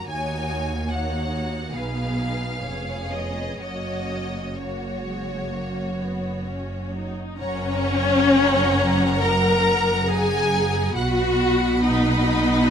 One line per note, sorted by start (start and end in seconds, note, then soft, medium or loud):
0.06 1.70 D#2 medium
0.06 1.71 D#2 medium
0.06 0.84 A#3 medium
0.06 0.84 D#4 medium
0.06 0.85 F#4 soft
0.06 0.85 C#5 medium
0.06 0.87 G#5 medium
0.86 1.72 A#3 soft
0.86 1.72 D#4 soft
0.86 1.73 F#4 soft
0.86 1.73 C#5 soft
0.86 1.75 F#5 medium
1.74 2.64 B1 medium
1.74 2.64 B2 soft
1.74 2.62 B3 medium
1.74 2.62 D#4 medium
1.74 2.61 G#4 soft
1.74 2.62 B4 soft
1.74 3.12 F5 medium
2.62 3.60 F1 medium
2.62 3.60 F2 soft
2.62 3.57 B3 soft
2.62 3.58 C#4 soft
2.62 3.57 G#4 soft
2.62 3.59 C#5 soft
3.11 3.60 D#5 medium
3.59 7.16 F#1 medium
3.59 7.15 F#2 soft
3.59 4.55 A#3 soft
3.59 4.55 C#4 soft
3.59 4.56 F#4 soft
3.59 4.55 C#5 soft
3.59 4.55 D#5 medium
4.56 5.01 A#3 soft
4.56 7.15 F#4 soft
4.56 6.46 C#5 medium
4.56 7.15 C#5 soft
5.05 5.51 G#3 medium
5.51 5.98 A#3 medium
5.97 6.45 B3 medium
6.46 6.93 C#4 soft
6.93 7.39 D#4 medium
7.39 10.93 F#1 medium
7.39 10.92 F#2 medium
7.39 9.17 C#4 loud
7.39 9.18 C#5 loud
7.39 10.92 F#5 medium
7.39 10.92 A#5 medium
9.21 10.09 A#4 loud
9.21 10.09 A#5 loud
10.07 10.95 G#4 loud
10.07 10.96 G#5 loud
10.96 12.70 B1 medium
10.96 12.70 B2 medium
10.96 11.82 F#4 loud
10.96 12.70 F#5 medium
10.96 11.80 F#5 medium
10.96 12.70 B5 medium
11.83 12.70 D#4 loud
11.83 12.70 D#5 medium